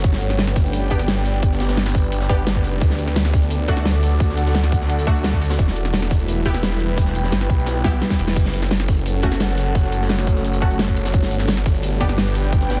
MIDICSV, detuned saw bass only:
0, 0, Header, 1, 2, 480
1, 0, Start_track
1, 0, Tempo, 346821
1, 57, Time_signature, 4, 2, 24, 8
1, 17715, End_track
2, 0, Start_track
2, 0, Title_t, "Detuned saw bass"
2, 0, Program_c, 0, 39
2, 56, Note_on_c, 0, 31, 94
2, 1957, Note_off_c, 0, 31, 0
2, 1976, Note_on_c, 0, 31, 97
2, 3157, Note_off_c, 0, 31, 0
2, 3176, Note_on_c, 0, 31, 99
2, 3877, Note_off_c, 0, 31, 0
2, 3896, Note_on_c, 0, 38, 98
2, 5797, Note_off_c, 0, 38, 0
2, 5816, Note_on_c, 0, 38, 96
2, 7717, Note_off_c, 0, 38, 0
2, 7736, Note_on_c, 0, 28, 97
2, 9637, Note_off_c, 0, 28, 0
2, 9656, Note_on_c, 0, 28, 94
2, 10117, Note_off_c, 0, 28, 0
2, 10136, Note_on_c, 0, 31, 101
2, 10357, Note_off_c, 0, 31, 0
2, 10376, Note_on_c, 0, 35, 97
2, 11077, Note_off_c, 0, 35, 0
2, 11336, Note_on_c, 0, 28, 94
2, 11557, Note_off_c, 0, 28, 0
2, 11576, Note_on_c, 0, 30, 97
2, 13477, Note_off_c, 0, 30, 0
2, 13496, Note_on_c, 0, 30, 98
2, 15397, Note_off_c, 0, 30, 0
2, 15416, Note_on_c, 0, 31, 99
2, 17317, Note_off_c, 0, 31, 0
2, 17336, Note_on_c, 0, 31, 99
2, 17715, Note_off_c, 0, 31, 0
2, 17715, End_track
0, 0, End_of_file